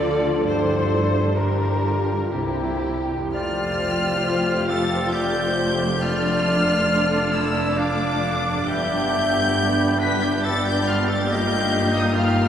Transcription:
Already playing: double bass section D2, cello section D3, harp D3 D4 F4 A4 F5 A5, french horn section F3 D4, violin section F4 D5, viola section F4, flute A4
0.01 harp F3
0.23 harp D4
0.44 double bass section G1, harp G2, cello section G2, french horn section G3, violin section D4 C5, viola section E4, flute A4
0.68 harp D3
0.91 harp G3
1.14 harp D4
1.38 viola section D4, flute G4, harp A#4, violin section A#4
1.84 viola section F4, harp D5
2.09 harp A#5
2.32 double bass section C2, harp C3, cello section C3, french horn section A#3 E4, flute E4, violin section E4 G4, viola section E4
2.58 harp C4
2.84 harp G3
3.10 harp E4
3.16 harp F2
3.21 harp G3
3.25 harp F3
3.30 double bass section F1, cello section F2, oboe F4, violin section G4 C5, french horn section G4, harp A4
3.34 viola section A3 F4, french horn section A3, clarinet D5, violin section F6
4.22 clarinet C5
4.68 oboe A4, clarinet F5, violin section A6
5.13 oboe G4, clarinet D5, violin section G6
5.57 clarinet C5
5.83 harp F2
5.88 harp A3
5.92 harp D4
5.96 harp A4
6.01 viola section D4, french horn section D4, oboe F4, violin section A4 D5 F6, clarinet D5
6.89 clarinet D5
7.32 oboe E4, violin section E6
7.76 oboe D4, clarinet F5, violin section D6
8.50 harp G2
8.55 harp B3
8.59 harp D4
8.64 double bass section G1, cello section G2, french horn section B3, viola section D4, harp G4, violin section G6
8.68 viola section B3, oboe G4, violin section G4, clarinet E5
9.99 oboe B4, violin section B6
10.23 oboe G4, violin section G6
10.44 oboe A4, clarinet D5, violin section A6
10.64 oboe G4, violin section G6
10.87 oboe F4, violin section F6
11.08 harp G2, oboe A4, violin section A6
11.17 harp A#3
11.21 harp D#4
11.26 french horn section A#3 F4, harp F4, oboe G4
11.31 viola section A#3 D#4, clarinet D#5, violin section F5 G6
11.93 oboe D#4
11.97 violin section D#6
12.13 oboe F4, clarinet F5, violin section F6

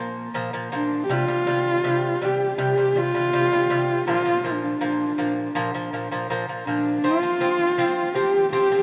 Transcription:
Already playing: lute A#2 F3, horsehead fiddle A#3
0.34 lute A#2 F3
0.53 lute A#2 F3
0.72 lute A#2 F3, horsehead fiddle D4
1.04 horsehead fiddle G4
1.09 lute C3 G3, horsehead fiddle F4
1.28 lute C3 G3
1.47 lute C3 G3
1.84 lute C3 G3
2.22 lute C3 G3, horsehead fiddle G4
2.58 lute C3 G3, horsehead fiddle G4
2.77 lute C3 G3
2.96 lute C3 G3, horsehead fiddle F4
3.14 lute C3 G3
3.33 lute C3 G3
3.52 lute C3 G3
3.70 lute C3 G3
4.07 lute A#2 F3, horsehead fiddle F4
4.25 lute A#2 F3
4.44 lute A#2 F3, horsehead fiddle D4
4.63 horsehead fiddle D4
4.81 lute A#2 F3
5.18 lute A#2 F3
5.55 lute A#2 F3
5.74 lute A#2 F3
5.93 lute A#2 F3
6.11 lute A#2 F3
6.30 lute A#2 F3
6.49 lute A#2 F3
6.67 lute A#2 F3, horsehead fiddle D4
7.03 lute F3 C4, horsehead fiddle F4
7.22 lute F3 C4
7.40 lute F3 C4
7.78 lute F3 C4
8.14 lute F3 C4, horsehead fiddle G4
8.53 lute F3 C4, horsehead fiddle G4
8.71 lute F3 C4

